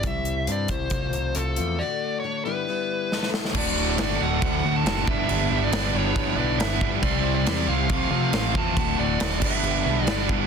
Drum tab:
CC |----------------|----------------|x---x---x---x---|x---x---x---x---|
HH |x-x-x-x-x-x-x-x-|----------------|----------------|----------------|
SD |----------------|------------oooo|----o-------o---|----o-------o---|
BD |o-----o-o-------|----------------|o-------o-----o-|--------o-----o-|

CC |x---x---x---x---|x---x-x-x---x---|
HH |----------------|----------------|
SD |----o-------o---|----o-------o---|
BD |o-------o-----o-|o-----o-------o-|